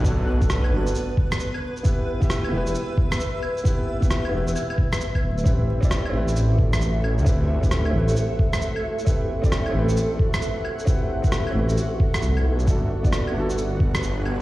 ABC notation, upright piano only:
X:1
M:4/4
L:1/16
Q:"Swing 16ths" 1/4=133
K:Ador
V:1 name="Upright piano"
[B,DFA]3 [B,DFA]3 [B,DFA]8- [B,DFA]2 | [B,EGB]3 [B,EGe] z2 [B,EGB]8- [B,EGB]2 | [B,EGB]3 [B,EGB]3 [B,EGB]8- [B,EGB]2 | [CEGB]3 [CEGd] z2 [CEGB]8- [CEGB]2 |
[CEGB]3 [CEGB]3 [CEGB]8- [CEGB]2 | [CEGB]3 [CEGd] z2 [CEGB]8- [CEGB]2 | [CEGB]3 [CEGB]3 [CEGB]8- [CEGB]2 | [B,DFA]3 [B,DFd] z2 [B,DFA]8- [B,DFA]2 |]